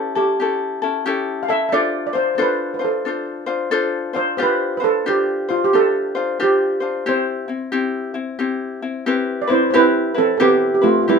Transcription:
Already playing: C#4 E4 G4 A4
0.15 C#4 E4 G4 A4
0.40 C#4 E4 G4 A4
0.82 C#4 E4 A4
1.06 C#4 E4 G4 A4
1.43 F5
1.48 C#4 E4 A4 E5
1.69 D4 A4 D5 E5
1.73 F4 C5
2.07 D5
2.13 D4 F4 C5
2.35 D4 F4 A4 C5
2.39 B4 C5
2.74 B4
2.79 D4 F4 C5
2.85 A4
3.05 D4 F4 A4 C5
3.46 D4 F4 C5
3.71 D4 F4 A4 C5
4.13 D4 F4 C5
4.37 D4 F4 G4 C5
4.42 B4
4.77 F4 B4 C5
4.82 D4 A4
5.06 D4 F4 G4 C5
5.48 D4 F4 C5
5.64 G4
5.73 D4 F4 G4 A4 C5
6.15 D4 F4 C5
6.40 D4 F4 G4 C5
6.80 D4 F4 C5
7.06 C4 E4 G4 C5
7.48 C4 E4
7.72 C4 E4 G4
8.14 C4 E4
8.39 C4 E4 G4
8.82 C4 E4
9.06 C4 E4 G4 B4
9.42 D5
9.47 C4 E4 B4 C5
9.70 C4 E4 G4 C5
9.75 E4 B4
10.14 C4 E4 A4 B4
10.19 C4
10.37 C4 E4 G4 A4 B4
10.42 B3
10.75 G4
10.81 A3 C4 E4 F4 B4
11.02 F4
11.08 G3 C4 E4 G4 B4

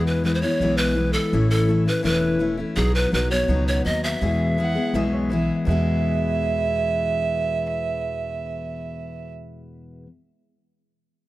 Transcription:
Already playing: E2 B2 E3 G#3 B3 E4
0.07 B4
0.24 E3 G#3 B3 E4 B4
0.34 C5
0.42 E3 G#3 B3 E4 C#5
0.60 B1 E2 B2 E3 G#3 B3 E4
0.77 B4
0.95 E3 G#3 B3 E4
1.13 A4
1.33 A1 A2 E3 A3 C#4 E4
1.50 A4
1.68 E3 A3 C#4 E4
1.86 A3 C#4 E4 B4
2.03 E1 A2 E3 A3 C#4 E4 B4
2.39 E3 A3 C#4 E4
2.57 A3 C#4 E4
2.75 B1 B2 F#3 B3 D#4 F#4 G#4
2.95 B4
3.12 B1 F#3 B3 D#4 F#4 B4
3.30 B3 D#4 F#4 C#5
3.48 C#2 B2 F#3 B3 D#4 F#4
3.68 C#5
3.85 D#2 F#3 B3 D#4 F#4 D#5
4.04 E5
4.21 E2 B2 E3 G#3 B3 G#4
4.58 E3 G#3 B3 G#4 F#5
4.75 E3 G#3 B3 G#4
4.93 B1 E2 B2 E3 G#3 B3 G#4 E5
5.13 C#5
5.30 E3 G#3 B3 G#4 E5
5.65 E2 B2 E3 G#3 E5
5.70 B3 G#4

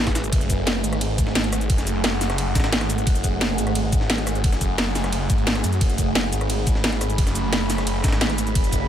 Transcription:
Already playing: A3 G#4 B4
0.00 A1
0.07 kick, cross-stick, snare, closed hi-hat
0.15 snare, closed hi-hat, cabasa
0.24 closed hi-hat, cabasa
0.32 F#1 F#5, kick, closed hi-hat, ride
0.41 closed hi-hat, cabasa
0.50 kick, closed hi-hat, cabasa
0.67 snare, closed hi-hat, ride
0.84 G#1, closed hi-hat, cabasa
0.93 cross-stick, closed hi-hat
1.01 closed hi-hat, ride
1.18 kick, closed hi-hat, cabasa
1.27 snare
1.35 snare, closed hi-hat, ride
1.44 snare, closed hi-hat
1.52 cross-stick, closed hi-hat, cabasa
1.61 closed hi-hat, cabasa
1.70 F#1, kick, closed hi-hat, ride
1.78 snare, closed hi-hat, cabasa
1.87 closed hi-hat, cabasa
2.04 snare, closed hi-hat, ride
2.12 snare
2.21 F#1, snare, closed hi-hat, open hi-hat, cabasa
2.30 cross-stick, snare, closed hi-hat
2.38 closed hi-hat, ride
2.55 G#1, kick, snare, closed hi-hat, cabasa
2.60 snare, closed hi-hat
2.64 snare, closed hi-hat
2.72 snare, closed hi-hat, ride
2.81 cross-stick, snare, closed hi-hat
2.90 closed hi-hat, cabasa
2.98 closed hi-hat, cabasa
3.07 F#1, kick, closed hi-hat, ride
3.15 closed hi-hat, cabasa
3.24 kick, closed hi-hat, cabasa
3.41 snare, closed hi-hat, ride
3.58 G#1, closed hi-hat, cabasa
3.67 cross-stick, closed hi-hat
3.75 closed hi-hat, ride
3.92 kick, closed hi-hat, cabasa
4.01 snare
4.10 snare, closed hi-hat, ride
4.18 snare, closed hi-hat
4.27 cross-stick, closed hi-hat, cabasa
4.35 closed hi-hat, cabasa
4.44 F#1, kick, closed hi-hat, ride
4.52 snare, closed hi-hat, cabasa
4.61 kick, closed hi-hat, cabasa
4.78 snare, closed hi-hat, ride
4.87 snare
4.95 F#1, snare, closed hi-hat, open hi-hat, cabasa
5.04 cross-stick, snare, closed hi-hat
5.12 closed hi-hat, ride
5.30 G#1, kick, closed hi-hat, cabasa
5.38 closed hi-hat
5.47 snare, closed hi-hat, ride
5.55 cross-stick, snare, closed hi-hat
5.64 F#2, closed hi-hat, cabasa
5.73 closed hi-hat, cabasa
5.81 F#1 B5, kick, closed hi-hat, ride
5.90 closed hi-hat, cabasa
5.98 kick, closed hi-hat, cabasa
6.15 snare, closed hi-hat, ride
6.32 G#1, closed hi-hat, cabasa
6.41 cross-stick, closed hi-hat
6.50 closed hi-hat, ride
6.67 kick, closed hi-hat, cabasa
6.75 snare
6.84 snare, closed hi-hat, ride
6.92 snare, closed hi-hat
7.01 cross-stick, closed hi-hat, cabasa
7.10 closed hi-hat, cabasa
7.18 F#1, kick, closed hi-hat, ride
7.27 snare, closed hi-hat, cabasa
7.35 closed hi-hat, cabasa
7.52 snare, closed hi-hat, ride
7.61 snare
7.70 F#1, snare, closed hi-hat, open hi-hat, cabasa
7.78 cross-stick, snare, closed hi-hat
7.87 closed hi-hat, ride
8.04 G#1, kick, snare, closed hi-hat, cabasa
8.08 snare, closed hi-hat
8.12 snare, closed hi-hat
8.21 snare, closed hi-hat, ride
8.30 cross-stick, snare, closed hi-hat
8.38 closed hi-hat, cabasa
8.47 closed hi-hat, cabasa
8.55 F#1, kick, closed hi-hat, ride
8.64 closed hi-hat, cabasa
8.72 kick, closed hi-hat, cabasa

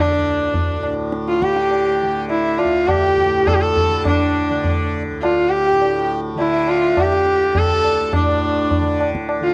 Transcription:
Already playing: D2 A2 D3 D4 A4
0.11 D4
0.18 D2
0.54 tabla tin, tabla ge
0.78 A2
0.83 tabla na
1.12 tabla te
1.28 F4, tabla te
1.40 D3 F4 G4, tabla ke
1.56 G4, tabla te
1.71 tabla tin
2.02 D3
2.30 E4, tabla tin
2.44 E4
2.58 F4, tabla na
2.64 D2
2.88 G4, tabla na, tabla ge
3.03 G4
3.18 tabla ge
3.26 A2
3.47 A4, tabla na, tabla ge
3.54 G4
3.59 A4
3.73 A4, tabla ge
3.89 D3
4.05 D4, tabla na, tabla ge
4.19 D4
4.50 D3
4.64 tabla tin, tabla ge
5.11 D2
5.22 F4, tabla na
5.36 F4
5.49 G4
5.66 G4
5.72 A2
5.82 tabla tin
6.35 D3 E4, tabla tin
6.52 E4
6.68 F4, tabla na
6.96 D3, tabla na, tabla ge
7.00 G4
7.12 G4
7.26 tabla te
7.55 D2 A4, tabla tin, tabla ge
7.68 A4
7.84 tabla na
8.13 D4, tabla na, tabla ge
8.18 A2
8.27 D4
8.71 tabla tin, tabla ge
8.81 D3
9.01 tabla na
9.15 tabla ke
9.29 tabla na
9.40 D3 F4

